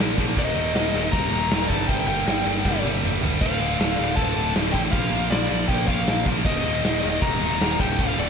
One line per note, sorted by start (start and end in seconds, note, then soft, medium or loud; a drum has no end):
0.00 0.16 A#1 medium
0.00 0.17 A#2 loud
0.00 0.35 D3 medium
0.00 0.18 F3 loud
0.00 1.68 A#3 medium
0.00 0.19 A#3 loud
0.00 0.35 F4 medium
0.00 0.34 D5 medium
0.00 snare loud
0.18 0.35 A#1 loud
0.18 0.36 A#2 loud
0.18 0.37 F3 medium
0.18 0.38 A#3 loud
0.18 kick medium
0.37 0.54 D#1 medium
0.37 0.55 D#2 loud
0.37 0.56 A#2 loud
0.37 1.69 D#3 medium
0.37 0.56 D#3 loud
0.37 3.39 G4 medium
0.37 3.39 A#4 medium
0.37 1.17 D#5 loud
0.37 kick loud
0.37 open hi-hat medium
0.56 0.73 D#1 loud
0.56 0.74 D#2 medium
0.56 0.74 A#2 loud
0.56 0.74 D#3 medium
0.75 0.93 D#1 loud
0.75 0.93 D#2 loud
0.75 0.93 A#2 loud
0.75 0.94 D#3 loud
0.75 snare loud
0.75 open hi-hat medium
0.85 snare soft
0.94 1.11 D#1 loud
0.94 1.12 D#2 medium
0.94 1.12 A#2 medium
0.94 1.13 D#3 loud
1.12 1.30 D#1 medium
1.12 1.31 D#2 loud
1.12 1.31 A#2 loud
1.12 1.31 D#3 loud
1.12 1.66 A#5 loud
1.12 kick loud
1.12 open hi-hat medium
1.32 1.49 D#1 loud
1.32 1.50 D#2 medium
1.32 1.51 A#2 medium
1.32 1.51 D#3 loud
1.51 1.69 D#1 loud
1.51 1.69 D#2 loud
1.51 1.70 A#2 loud
1.51 1.70 D#3 loud
1.51 snare loud
1.51 open hi-hat medium
1.68 1.87 G1 loud
1.68 1.87 G2 loud
1.68 3.40 D3 medium
1.68 1.88 D3 loud
1.68 1.88 G3 loud
1.68 3.40 A#3 medium
1.68 1.87 A5 loud
1.68 kick medium
1.88 2.06 G1 loud
1.88 2.06 G2 loud
1.88 2.07 D3 loud
1.88 2.07 G3 loud
1.88 2.06 G5 loud
1.88 kick loud
1.88 open hi-hat medium
2.07 2.25 G1 medium
2.07 2.26 G2 loud
2.07 2.27 D3 loud
2.07 2.26 G3 loud
2.07 2.80 G5 medium
2.26 2.44 G1 loud
2.26 2.45 G2 medium
2.26 2.46 D3 loud
2.26 2.46 G3 loud
2.26 snare loud
2.26 open hi-hat medium
2.45 2.63 G1 medium
2.45 2.65 G2 medium
2.45 2.65 D3 loud
2.45 2.66 G3 medium
2.65 2.83 G1 medium
2.65 2.84 G2 loud
2.65 2.84 D3 loud
2.65 2.85 G3 loud
2.65 kick loud
2.65 snare medium
2.83 3.01 G1 medium
2.83 3.01 G2 medium
2.83 3.02 D3 medium
2.83 3.03 G3 medium
2.83 high tom medium
3.03 3.21 G1 medium
3.03 3.22 G2 medium
3.03 3.22 D3 loud
3.03 3.23 G3 loud
3.03 mid tom medium
3.21 3.39 G1 loud
3.21 3.41 G2 medium
3.21 3.41 D3 medium
3.21 3.41 G3 medium
3.21 floor tom loud
3.41 3.58 D1 medium
3.41 3.59 D2 loud
3.41 3.59 A2 loud
3.41 6.43 D3 medium
3.41 3.60 D3 loud
3.41 4.93 A3 medium
3.41 6.43 F4 medium
3.41 4.93 A4 medium
3.41 4.20 F5 medium
3.41 kick loud
3.41 splash medium
3.41 crash loud
3.60 3.78 D1 loud
3.60 3.78 D2 medium
3.60 3.78 A2 medium
3.60 3.79 D3 medium
3.79 3.97 D1 loud
3.79 3.98 D2 medium
3.79 3.98 A2 loud
3.79 3.98 D3 loud
3.79 snare loud
3.79 open hi-hat medium
3.99 4.16 D1 medium
3.99 4.16 D2 medium
3.99 4.16 A2 medium
3.99 4.17 D3 loud
4.16 4.34 D1 medium
4.16 4.35 D2 medium
4.16 4.35 A2 loud
4.16 4.36 D3 loud
4.16 4.52 A5 medium
4.16 kick loud
4.16 open hi-hat medium
4.36 4.54 D1 medium
4.36 4.54 D2 medium
4.36 4.54 A2 medium
4.36 4.54 D3 medium
4.55 4.72 D1 medium
4.55 4.72 D2 loud
4.55 4.72 A2 medium
4.55 4.73 D3 loud
4.55 snare loud
4.55 open hi-hat medium
4.72 4.92 A1 loud
4.72 4.92 D2 medium
4.72 4.92 A2 medium
4.72 4.92 D3 medium
4.72 4.78 G5 medium
4.72 kick medium
4.92 5.10 A#1 medium
4.92 5.10 A#2 loud
4.92 5.11 F3 loud
4.92 5.12 A#3 loud
4.92 6.45 A#3 medium
4.92 5.32 F5 loud
4.92 kick loud
4.92 open hi-hat medium
4.96 7.77 A#4 medium
5.12 5.29 A#1 medium
5.12 5.30 A#2 medium
5.12 5.30 F3 loud
5.12 5.32 A#3 loud
5.30 5.48 A#1 loud
5.30 5.49 A#2 loud
5.30 5.50 F3 medium
5.30 5.50 A#3 loud
5.30 5.66 D5 medium
5.30 snare loud
5.30 open hi-hat medium
5.42 snare soft
5.50 5.68 A#1 medium
5.50 5.68 A#2 medium
5.50 5.68 F3 medium
5.50 5.69 A#3 loud
5.68 5.86 A#1 medium
5.68 5.87 A#2 loud
5.68 5.87 F3 loud
5.68 5.88 A#3 loud
5.68 5.87 G5 loud
5.68 kick loud
5.68 open hi-hat medium
5.88 6.05 A#1 medium
5.88 6.05 A#2 medium
5.88 6.06 F3 medium
5.88 6.06 A#3 medium
5.88 6.24 F5 loud
5.88 kick medium
6.07 6.24 A#1 medium
6.07 6.25 A#2 loud
6.07 6.25 F3 loud
6.07 6.26 A#3 loud
6.07 snare loud
6.07 open hi-hat medium
6.26 6.44 A#1 loud
6.26 6.44 A#2 medium
6.26 6.45 F3 medium
6.26 6.45 A#3 loud
6.26 kick medium
6.45 6.62 D#1 loud
6.45 6.63 D#2 loud
6.45 6.63 A#2 loud
6.45 7.78 D#3 medium
6.45 6.64 D#3 loud
6.45 7.78 A#3 medium
6.45 7.77 G4 medium
6.45 7.24 D#5 loud
6.45 kick loud
6.45 open hi-hat medium
6.64 6.81 D#1 loud
6.64 6.82 D#2 medium
6.64 6.83 A#2 medium
6.64 6.83 D#3 loud
6.83 7.01 D#1 loud
6.83 7.01 D#2 loud
6.83 7.01 A#2 loud
6.83 7.02 D#3 loud
6.83 snare loud
6.83 open hi-hat medium
6.94 snare soft
7.02 7.20 D#1 medium
7.02 7.20 D#2 medium
7.02 7.21 A#2 medium
7.02 7.21 D#3 loud
7.21 7.39 D#1 medium
7.21 7.39 D#2 loud
7.21 7.40 A#2 loud
7.21 7.41 D#3 loud
7.21 7.80 A#5 loud
7.21 kick loud
7.21 open hi-hat medium
7.41 7.58 D#1 medium
7.41 7.59 D#2 medium
7.41 7.59 A#2 medium
7.41 7.60 D#3 medium
7.52 snare soft
7.60 7.77 D#1 medium
7.60 7.78 D#2 medium
7.60 7.78 A#2 loud
7.60 7.79 D#3 loud
7.60 snare loud
7.60 open hi-hat medium
7.79 7.96 D1 loud
7.79 7.96 D2 medium
7.79 7.96 A2 loud
7.79 7.97 D3 loud
7.79 8.29 D3 medium
7.79 8.29 A3 medium
7.79 8.29 F4 medium
7.79 8.29 A4 loud
7.79 7.99 G5 medium
7.79 kick medium
7.97 8.15 D1 medium
7.97 8.15 D2 loud
7.97 8.15 A2 loud
7.97 8.16 D3 loud
7.97 kick loud
7.97 open hi-hat medium
8.02 8.19 F5 loud
8.16 8.29 D1 loud
8.16 8.29 D2 medium
8.16 8.29 A2 loud
8.16 8.29 D3 medium
8.16 8.29 D5 medium